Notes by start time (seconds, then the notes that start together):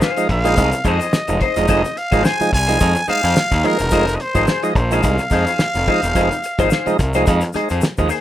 0.01 D#4 G#4 C5 F5, snare, shaker
0.16 F3 G#3 D#4, closed hi-hat, shaker
0.29 A#1 F5, muted clean electric guitar stroke, kick, closed hi-hat
0.45 F3 G#3 D#4 G#4 C5, closed hi-hat, shaker
0.57 C2 G#3 D#4, muted clean electric guitar stroke, kick, closed hi-hat, shaker
0.72 muted clean electric guitar stroke, snare, closed hi-hat, shaker
0.85 F2 G#3 D#4 G#4 C5 D#5, kick, closed hi-hat, shaker
1.00 D#4 G#4 C5, closed hi-hat, shaker
1.13 muted picked electric bass stroke, snare, shaker
1.27 F1 F3 G#3 D#4, muted clean electric guitar stroke, closed hi-hat, shaker
1.40 D#4 G#4 C5 D#5, kick, closed hi-hat
1.56 E1 F3 G#3 D#4, muted clean electric guitar stroke, snare, closed hi-hat, shaker
1.68 F1 F3 G#3 D#4 G#4 C5, kick, closed hi-hat, shaker
1.85 muted clean electric guitar stroke, snare, shaker
1.96 F5, muted clean electric guitar stroke, closed hi-hat
2.12 G#1 F3 G#3 D#4 G#4 C5, kick, closed hi-hat, shaker
2.23 D#4 G#4 C5 G#5, snare, shaker
2.41 F3 G#3 D#4, muted picked electric bass stroke, closed hi-hat, shaker
2.52 C2 G#5, muted clean electric guitar stroke, kick, snare, closed hi-hat
2.67 F3 G#3 D#4 G#4 C5, snare, closed hi-hat, shaker
2.80 F2 G#3 D#4, muted clean electric guitar stroke, kick, closed hi-hat, shaker
2.95 muted clean electric guitar stroke, snare, closed hi-hat, shaker
3.07 G#3 D#4 G#4 C5 F5, muted picked electric bass stroke, closed hi-hat, shaker
3.23 F2 D#4 G#4 C5, closed hi-hat, shaker
3.36 muted picked electric bass stroke, snare, shaker
3.51 D#2, muted clean electric guitar stroke, kick, closed hi-hat, shaker
3.64 F3 G#3 D#4 G#4 A#4 C5, closed hi-hat
3.79 E1, muted clean electric guitar stroke, closed hi-hat, shaker
3.91 F1 F3 G#3 D#4 G#4 C5, kick, closed hi-hat, shaker
4.08 muted clean electric guitar stroke, snare, closed hi-hat, shaker
4.15 D#5
4.20 C5, muted clean electric guitar stroke, closed hi-hat
4.35 G#1 F3 G#3 D#4 G#4 C5, kick, closed hi-hat, shaker
4.47 D#4 G#4 C5, snare, shaker
4.63 F3 G#3 D#4 D#5, closed hi-hat, shaker
4.75 A#1 C5, muted clean electric guitar stroke, kick, closed hi-hat
4.91 F3 G#3 D#4 G#4 C5 F5, closed hi-hat, shaker
5.03 C2 G#3 D#4, muted clean electric guitar stroke, kick, closed hi-hat, shaker
5.18 muted clean electric guitar stroke, snare, shaker
5.30 F2 G#3 D#4 G#4, kick, closed hi-hat, shaker
5.35 C5
5.47 D#4 G#4 C5, closed hi-hat, shaker
5.59 muted picked electric bass stroke, snare, shaker
5.74 F1, muted clean electric guitar stroke, closed hi-hat, shaker
5.87 F3 G#3 D#4 G#4 C5, kick, closed hi-hat
6.03 E1, muted clean electric guitar stroke, snare, closed hi-hat, shaker
6.15 F1 F3 G#3 D#4 G#4 C5, kick, closed hi-hat, shaker
6.31 muted clean electric guitar stroke, snare, closed hi-hat, shaker
6.43 muted clean electric guitar stroke, closed hi-hat, shaker
6.59 G#1 F3 G#3 D#4 G#4 C5, kick, closed hi-hat, shaker
6.70 D#4 G#4 C5, snare, shaker
6.86 F3 G#3 D#4, muted picked electric bass stroke, closed hi-hat, shaker
6.99 C2, muted clean electric guitar stroke, kick, snare, closed hi-hat, shaker
7.14 F3 G#3 D#4 G#4 C5, snare, closed hi-hat, shaker
7.26 F2 G#3 D#4, muted clean electric guitar stroke, kick, closed hi-hat, shaker
7.41 muted clean electric guitar stroke, snare, closed hi-hat, shaker
7.53 G#3 D#4 G#4 C5, muted picked electric bass stroke, closed hi-hat, shaker
7.69 F2 D#4 G#4 C5, closed hi-hat, shaker
7.81 muted picked electric bass stroke, snare, shaker
7.98 D#2 F3 G#3 D#4, muted clean electric guitar stroke, kick, closed hi-hat, shaker
8.09 D#4 G#4 C5, open hi-hat, shaker